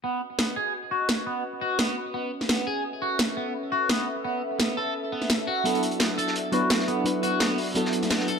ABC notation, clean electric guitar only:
X:1
M:4/4
L:1/8
Q:"Swing 16ths" 1/4=171
K:C#phr
V:1 name="Clean electric guitar"
B, z B, G z F z B, | z F B, z B, z B, G | z F z B, z F B, z | B, z B, A z B, z F |
B, z B, A z F z B, | z F B, z B, z B, A |]